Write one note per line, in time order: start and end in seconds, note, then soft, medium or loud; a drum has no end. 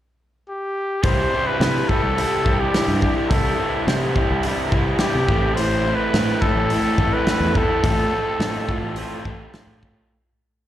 0.49 1.05 G4 medium
1.03 1.25 C2 medium
1.03 1.33 C3 medium
1.03 1.34 E3 medium
1.03 1.34 G3 medium
1.03 1.34 C4 medium
1.03 1.34 E4 loud
1.03 1.49 C5 loud
1.03 kick loud
1.03 open hi-hat soft
1.33 1.61 C3 medium
1.33 1.62 E3 medium
1.33 1.62 G3 medium
1.33 1.62 C4 medium
1.33 1.62 E4 medium
1.47 1.90 B4 medium
1.60 1.81 C3 medium
1.60 1.89 C3 medium
1.60 1.91 E3 medium
1.60 1.91 G3 medium
1.60 1.91 C4 medium
1.60 1.92 E4 medium
1.60 snare loud
1.60 open hi-hat soft
1.88 2.16 C3 medium
1.88 2.18 E3 medium
1.88 2.19 G3 medium
1.88 2.18 C4 medium
1.88 2.19 E4 medium
1.88 2.61 A4 medium
1.88 kick medium
2.03 2.24 C2 medium
2.17 2.45 C3 medium
2.17 2.47 E3 medium
2.17 2.46 G3 loud
2.17 2.47 C4 loud
2.17 2.48 E4 loud
2.17 open hi-hat medium
2.46 2.67 C2 medium
2.46 2.73 C3 medium
2.46 2.74 E3 medium
2.46 2.75 G3 medium
2.46 2.75 C4 medium
2.46 2.75 E4 medium
2.46 kick medium
2.60 3.02 G4 medium
2.74 3.01 C3 medium
2.74 3.02 E3 medium
2.74 3.03 G3 medium
2.74 3.03 C4 medium
2.74 3.03 E4 medium
2.74 snare loud
2.74 open hi-hat soft
2.88 3.09 G2 medium
3.02 3.30 C3 medium
3.02 3.31 E3 medium
3.02 3.31 G3 medium
3.02 3.32 C4 medium
3.02 3.32 E4 medium
3.02 3.15 G4 medium
3.02 kick medium
3.29 3.52 C2 loud
3.29 3.57 C3 medium
3.29 3.59 E3 medium
3.29 3.59 G3 medium
3.29 3.59 C4 medium
3.29 3.82 A4 medium
3.29 kick loud
3.29 open hi-hat soft
3.33 3.60 E4 medium
3.58 3.85 C3 medium
3.58 3.87 E3 medium
3.58 3.87 G3 medium
3.58 3.88 C4 medium
3.58 3.88 E4 medium
3.86 4.13 C3 medium
3.86 4.19 C3 medium
3.86 4.15 E3 medium
3.86 4.16 G3 medium
3.86 4.16 C4 medium
3.86 4.16 E4 medium
3.86 snare loud
3.86 open hi-hat soft
4.14 4.44 C3 medium
4.14 4.44 E3 medium
4.14 4.45 G3 medium
4.14 4.46 C4 medium
4.14 4.46 E4 medium
4.14 kick medium
4.31 4.51 C2 medium
4.43 4.72 C3 medium
4.43 4.73 E3 medium
4.43 4.73 G3 loud
4.43 4.74 C4 loud
4.43 4.74 E4 loud
4.43 open hi-hat soft
4.72 4.93 C2 medium
4.72 4.99 C3 medium
4.72 5.00 E3 medium
4.72 5.00 G3 medium
4.72 5.02 C4 medium
4.72 5.01 E4 medium
4.72 kick medium
4.99 5.27 C3 medium
4.99 5.27 E3 medium
4.99 5.27 G3 medium
4.99 5.31 C4 medium
4.99 5.28 E4 medium
4.99 5.56 G4 medium
4.99 snare loud
4.99 open hi-hat soft
5.15 5.25 C3 medium
5.29 5.93 A1 loud
5.29 5.57 A2 medium
5.29 5.57 E3 loud
5.29 5.58 A3 medium
5.29 5.58 C4 loud
5.29 5.58 E4 loud
5.29 kick medium
5.55 5.85 A2 medium
5.55 5.85 E3 medium
5.55 5.86 A3 loud
5.55 5.86 C4 medium
5.55 5.97 C5 loud
5.55 open hi-hat soft
5.59 5.86 E4 loud
5.85 6.13 A2 medium
5.85 6.13 E3 medium
5.85 6.14 A3 medium
5.85 6.15 C4 medium
5.85 6.14 E4 medium
5.96 6.43 B4 loud
6.14 6.35 A2 medium
6.14 6.42 A2 medium
6.14 6.42 E3 medium
6.14 6.43 A3 medium
6.14 6.44 C4 medium
6.14 6.43 E4 medium
6.14 snare loud
6.14 open hi-hat soft
6.41 6.71 A2 medium
6.41 6.70 E3 medium
6.41 6.72 A3 medium
6.41 6.72 C4 medium
6.41 6.72 E4 medium
6.41 7.15 A4 loud
6.41 kick medium
6.55 6.77 A1 medium
6.70 6.98 A2 medium
6.70 6.98 E3 medium
6.70 7.00 A3 medium
6.70 7.00 C4 medium
6.70 7.00 E4 loud
6.70 open hi-hat soft
6.98 7.20 A1 medium
6.98 7.26 A2 medium
6.98 7.26 E3 medium
6.98 7.28 A3 medium
6.98 7.28 C4 medium
6.98 7.27 E4 loud
6.98 kick medium
7.14 7.59 B4 loud
7.27 7.54 A2 medium
7.27 7.53 E3 medium
7.27 7.54 A3 medium
7.27 7.55 C4 medium
7.27 7.55 E4 medium
7.27 snare loud
7.27 open hi-hat soft
7.40 7.62 E2 medium
7.55 7.83 A2 medium
7.55 7.82 E3 medium
7.55 7.84 A3 medium
7.55 7.84 C4 medium
7.55 7.82 E4 medium
7.55 9.84 A4 loud
7.55 kick medium
7.83 8.05 A1 medium
7.83 8.10 A2 medium
7.83 8.11 F3 medium
7.83 8.11 A3 medium
7.83 8.11 C4 medium
7.83 8.12 F4 loud
7.83 kick loud
7.83 open hi-hat medium
8.12 8.40 A2 medium
8.12 8.41 F3 medium
8.12 8.42 A3 medium
8.12 8.42 C4 medium
8.12 8.42 F4 medium
8.39 8.72 A2 medium
8.39 8.68 A2 medium
8.39 8.68 F3 medium
8.39 8.69 A3 medium
8.39 8.69 C4 medium
8.39 8.69 F4 medium
8.39 snare loud
8.39 open hi-hat soft
8.69 8.96 A2 medium
8.69 8.96 F3 medium
8.69 8.96 A3 medium
8.69 8.97 C4 medium
8.69 8.98 F4 medium
8.69 kick medium
8.82 9.04 A1 medium
8.96 9.24 A2 medium
8.96 9.25 F3 medium
8.96 9.25 A3 loud
8.96 9.26 C4 loud
8.96 9.26 F4 loud
8.96 open hi-hat soft
9.25 9.47 A1 medium
9.25 9.52 A2 medium
9.25 9.53 F3 medium
9.25 9.54 A3 medium
9.25 9.54 C4 medium
9.25 9.54 F4 medium
9.25 kick medium
9.53 9.82 A2 medium
9.53 9.82 F3 medium
9.53 9.83 A3 medium
9.53 9.83 C4 medium
9.53 9.84 F4 medium
9.53 snare loud
9.53 open hi-hat soft
9.67 10.00 A2 medium
9.83 10.10 A2 medium
9.83 10.10 F3 medium
9.83 10.10 A3 medium
9.83 10.10 C4 medium
9.83 10.10 F4 medium
9.83 kick medium